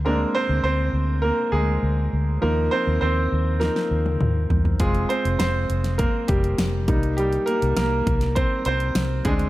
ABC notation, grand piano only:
X:1
M:4/4
L:1/8
Q:1/4=101
K:Cphr
V:1 name="Grand piano"
[B,B] [Cc] [Cc]2 [B,B] [A,A]2 z | B [Cc] [Cc]2 B3 z | A [Cc] [Cc]2 [B,B] [G,G]2 z | [G,G] [B,B] [B,B]2 [Cc] [Cc]2 A |]
V:2 name="Grand piano"
[A,C=D]3 z4 z | [F,B,E]4 [F,B,E] z3 | [A,CF] z6 [G,B,E]- | [G,B,E]2 z4 z [A,C=D] |]